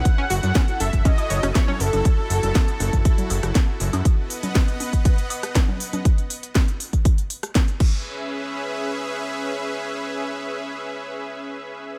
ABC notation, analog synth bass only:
X:1
M:4/4
L:1/16
Q:1/4=120
K:C#m
V:1 name="Analog synth bass" clef=bass
z2 F,,, F,, z2 F,,, F,,, z2 F,,, F,,, z2 F,,, F,,, | z2 F,,, F,,, z2 F,,, F,,, z2 F,,, F,,, z2 F,,, F,, | z16 | z16 |
z16 | z16 |]